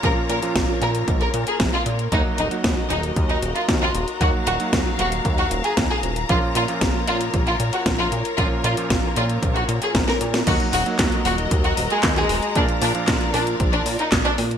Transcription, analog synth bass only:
X:1
M:4/4
L:1/8
Q:1/4=115
K:Ebm
V:1 name="Analog synth bass" clef=bass
B,,, B,, B,,, B,, B,,, B,, B,,, B,, | E,, E,,, E,, E,,, E,, E,,, E,, E,,, | E,, E,,, E,, E,,, E,, E,,, E,, E,,, | B,,, B,, B,,, B,, B,,, B,, B,,, B,, |
B,,, B,, B,,, B,, B,,, B,, B,,, B,, | E,, E,,, E,, E,,, E,, E,,, E,, E,,, | B,,, B,, B,,, B,, B,,, B,, B,,, B,, |]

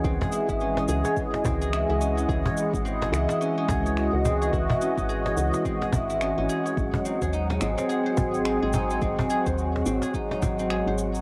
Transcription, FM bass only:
X:1
M:4/4
L:1/16
Q:"Swing 16ths" 1/4=107
K:C#m
V:1 name="FM bass" clef=bass
C,, z2 G,,,3 C,, z3 C,,3 C,,3 | C,, z2 G,,,3 C,, z3 C,,3 C,,3 | C,, z2 G,,,3 C,, z3 G,,,3 G,,, z2 | G,,, z2 D,,3 G,,, z3 G,,,3 G,,,3 |
G,,, z2 D,,3 G,,, z3 G,,,3 G,,,3 |]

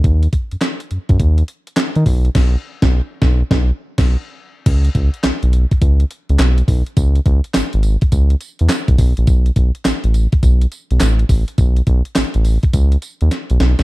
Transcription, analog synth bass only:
X:1
M:4/4
L:1/16
Q:"Swing 16ths" 1/4=104
K:Bmix
V:1 name="Analog synth bass" clef=bass
D,,2 z F,, z2 F,, F,, D,,2 z3 D, B,,,2 | B,,,2 z B,,,2 z B,,,2 B,,,2 z B,,,2 z3 | C,,2 C,, z B,,, B,,,2 z C,,2 z C,, B,,,2 B,,, z | C,,2 C,, z G,,, G,,,2 z C,,2 z E,, z B,,, B,,, ^A,,, |
B,,,2 B,,, z A,,, A,,,2 z B,,,2 z B,,, A,,,2 A,,, z | B,,,2 B,,, z A,,, A,,,2 z C,,2 z D,, z B,,, B,,, ^B,,, |]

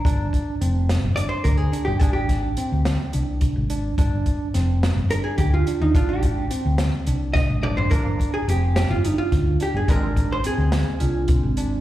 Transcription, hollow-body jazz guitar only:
X:1
M:7/8
L:1/16
Q:1/4=107
K:Gphr
V:1 name="Hollow-body jazz guitar"
B2 z6 d c B A2 G | A G6 z6 z | z8 B A G F2 E | F G6 z3 e2 d c |
B3 A G2 G F E F3 G A | B3 c A8- A2 |]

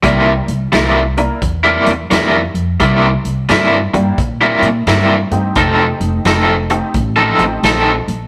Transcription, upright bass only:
X:1
M:4/4
L:1/8
Q:"Swing" 1/4=87
K:Cmix
V:1 name="Upright bass" clef=bass
C,, C,, C,,2 E,, E,, F,, F,, | C,, C,, G,, G,, B,, B,, G,, G,, | F,,, F,,, F,,,2 A,,, A,,, B,,, B,,, |]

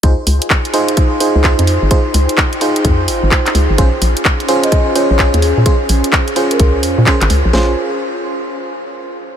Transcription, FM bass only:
X:1
M:4/4
L:1/16
Q:"Swing 16ths" 1/4=128
K:Bbdor
V:1 name="FM bass" clef=bass
D,, z D,, z8 D,,2 F,,2 A,,, | z2 D,, z4 z F,,2 A,,, A,,, z2 D,, A,,, | B,,, z B,,, z8 B,,,2 E,,2 B,, | z2 B,,, z4 z D,,2 F,, B,, z A,,, D,, B,,, |
B,,,2 z12 z2 |]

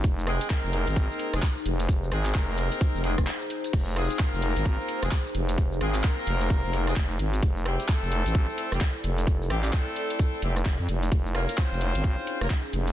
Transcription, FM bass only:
X:1
M:4/4
L:1/16
Q:"Swing 16ths" 1/4=130
K:Abmix
V:1 name="FM bass" clef=bass
F,,,3 z2 F,,,2 A,,,2 z2 F,,, z2 F,,,2- | F,,,2 A,,,2 F,,,3 z2 F,,,2 F,,, z4 | F,,,3 z2 F,,,2 A,,,2 z2 F,,, z2 F,,,2- | F,,,2 A,,,2 z2 F,,,3 F,,,3 F,,,2 A,,,2 |
F,,,3 z2 F,,,2 =A,,,2 z2 F,,, z2 F,,,2- | F,,,2 =A,,,2 z6 F,,,3 F,, F,,,2 | F,,,3 z2 F,,,2 A,,,2 z2 F,,, z2 F,,,2 |]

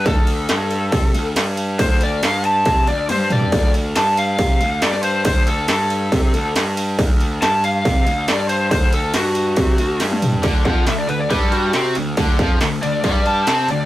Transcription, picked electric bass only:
X:1
M:4/4
L:1/8
Q:1/4=139
K:Clyd
V:1 name="Picked electric bass" clef=bass
D,,2 G,,2 C, D,, G,,2 | D,,2 G,,2 C, D,, G,,2 | D,,2 G,,2 C, D,, G,,2 | D,,2 G,,2 C, D,, G,,2 |
D,,2 G,,2 C, D,, G,,2 | D,,2 G,,2 C, D,, G,,2 | D,, =F,, D,, D,, G,,2 C, D,, | D,, =F,, D,, D,, G,,2 C, D,, |]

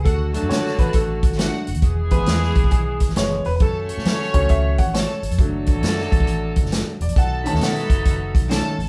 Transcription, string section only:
X:1
M:4/4
L:1/16
Q:"Swing" 1/4=135
K:Dlyd
V:1 name="String section"
[Ff]2 [Aa]2 [Aa]6 z2 [Ff]3 z | z16 | [Aa]2 [cc']2 [cc']6 z2 [Aa]3 z | z16 |
[Aa]2 [Bb]2 [Bb]6 z2 [Aa]3 z |]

